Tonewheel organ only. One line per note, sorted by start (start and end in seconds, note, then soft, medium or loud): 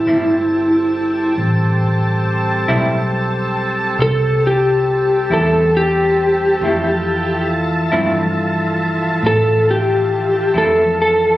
0.00 1.34 G3 medium
0.00 1.33 C4 medium
0.00 1.34 A4 medium
1.38 6.58 G3 medium
1.38 6.58 C4 medium
1.38 6.58 A4 medium
6.62 11.37 E3 medium
6.62 11.37 F3 medium
6.62 11.37 A4 medium